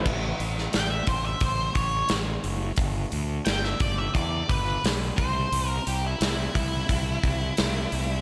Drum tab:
CC |x---------------|----------------|----------------|
HH |--o-o-o-o-o-o-o-|o-o-o-o-o-o-o-o-|o-o-o-o-o-o-o-o-|
SD |---oo-------o---|----oo------o---|----o-------o---|
BD |o-----o-o-o-----|o-----o-o-o---o-|------o-o-o-----|